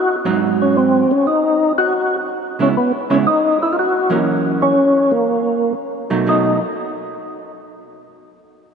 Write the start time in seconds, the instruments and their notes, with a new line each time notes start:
Already playing: tonewheel organ F#4
0.25 hollow-body jazz guitar G#2 F#3 C4 D#4
0.62 tonewheel organ C#4
0.77 tonewheel organ C4
1.11 tonewheel organ C#4
1.27 tonewheel organ D#4
1.78 tonewheel organ F#4
2.59 hollow-body jazz guitar C#3 G#3 B3 E4, tonewheel organ C#4
2.77 tonewheel organ B3
3.10 hollow-body jazz guitar C#3 G#3 B3 E4, tonewheel organ C#4
3.27 tonewheel organ D#4
3.63 tonewheel organ E4
3.73 tonewheel organ F4
3.79 tonewheel organ F#4
4.10 hollow-body jazz guitar F#2 E3 A#3 C#4
4.62 tonewheel organ C#4
5.11 tonewheel organ A#3
6.10 hollow-body jazz guitar B2 F#3 A3 D#4
6.26 hollow-body jazz guitar B2 F#3 A3 D#4, tonewheel organ D#4